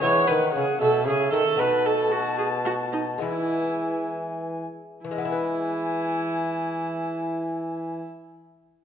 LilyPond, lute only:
\new Staff \with { instrumentName = "Lute" } { \clef bass \time 6/8 \key e \major \tempo 4. = 66 << { <gis b e'>2. | <a b dis'>2. | <gis b e'>2. | <e gis b e' b'>2.~ |
<e gis b e' b'>2. | } \\ { e8 dis8 cis8 b,8 cis8 dis8 | b,2. | e2~ e8 r8 | r2. |
r2. | } >> }